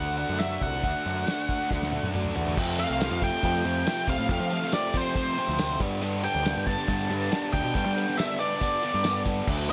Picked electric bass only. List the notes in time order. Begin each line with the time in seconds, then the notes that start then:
Already playing: D2
0.29 F#2
0.61 C2
0.84 D2
1.06 F#2
1.71 D2
2.03 F#2
2.36 E2
2.58 F2
2.90 C2
3.11 F2
3.44 F2
3.65 F2
4.08 C2
4.19 A2
4.29 F2
4.40 F3
5.48 D2
5.80 G2
6.35 D2
6.57 G2
6.88 G2
7.10 G2
7.54 D2
7.64 B2
7.75 G2
7.86 G3
8.94 G2
9.48 D2